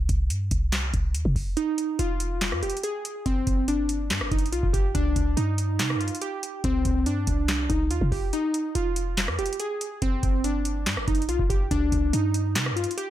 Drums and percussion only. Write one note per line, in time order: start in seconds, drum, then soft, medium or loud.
0.09 kick loud
0.09 closed hi-hat medium
0.30 closed hi-hat medium
0.51 kick loud
0.51 closed hi-hat medium
0.72 snare loud
0.72 clap medium
0.72 closed hi-hat medium
0.94 kick loud
0.94 closed hi-hat medium
1.15 closed hi-hat medium
1.25 kick loud
1.36 kick loud
1.36 open hi-hat medium
1.57 closed hi-hat medium
1.78 closed hi-hat medium
1.99 closed hi-hat medium
2.20 closed hi-hat medium
2.41 snare loud
2.41 clap medium
2.41 closed hi-hat medium
2.52 cross-stick loud
2.63 closed hi-hat medium
2.70 closed hi-hat medium
2.77 closed hi-hat medium
2.83 closed hi-hat medium
3.05 closed hi-hat medium
3.26 kick loud
3.26 closed hi-hat medium
3.47 kick loud
3.47 closed hi-hat medium
3.68 closed hi-hat medium
3.89 closed hi-hat medium
4.10 snare loud
4.10 clap medium
4.10 closed hi-hat medium
4.21 cross-stick loud
4.32 kick loud
4.32 closed hi-hat medium
4.39 closed hi-hat medium
4.46 closed hi-hat medium
4.53 closed hi-hat medium
4.63 kick loud
4.74 kick loud
4.74 closed hi-hat medium
4.95 kick loud
4.95 closed hi-hat medium
5.16 kick loud
5.16 closed hi-hat medium
5.37 closed hi-hat medium
5.58 closed hi-hat medium
5.79 snare loud
5.79 clap medium
5.79 closed hi-hat medium
5.90 cross-stick medium
6.01 closed hi-hat medium
6.08 closed hi-hat medium
6.15 closed hi-hat medium
6.22 closed hi-hat medium
6.43 closed hi-hat medium
6.64 kick loud
6.64 closed hi-hat medium
6.85 kick loud
6.85 closed hi-hat medium
7.06 closed hi-hat medium
7.27 kick medium
7.27 closed hi-hat medium
7.48 snare loud
7.48 clap medium
7.48 closed hi-hat medium
7.70 kick loud
7.70 closed hi-hat medium
7.91 closed hi-hat medium
8.01 kick loud
8.12 kick loud
8.12 open hi-hat medium
8.33 closed hi-hat medium
8.54 closed hi-hat medium
8.75 closed hi-hat medium
8.96 closed hi-hat medium
9.17 snare loud
9.17 clap medium
9.17 closed hi-hat medium
9.28 cross-stick loud
9.39 closed hi-hat medium
9.46 closed hi-hat medium
9.53 closed hi-hat medium
9.60 closed hi-hat medium
9.81 closed hi-hat medium
10.02 kick loud
10.02 closed hi-hat medium
10.23 kick loud
10.23 closed hi-hat medium
10.44 closed hi-hat medium
10.65 closed hi-hat medium
10.86 snare loud
10.86 clap medium
10.86 closed hi-hat medium
10.97 cross-stick loud
11.08 kick loud
11.08 closed hi-hat medium
11.15 closed hi-hat medium
11.22 closed hi-hat medium
11.29 closed hi-hat medium
11.39 kick loud
11.50 kick loud
11.50 closed hi-hat medium
11.71 kick loud
11.71 closed hi-hat medium
11.92 kick loud
11.92 closed hi-hat medium
12.13 closed hi-hat medium
12.34 closed hi-hat medium
12.55 snare loud
12.55 clap medium
12.55 closed hi-hat medium
12.66 cross-stick loud
12.77 closed hi-hat medium
12.84 closed hi-hat medium
12.91 closed hi-hat medium
12.98 closed hi-hat medium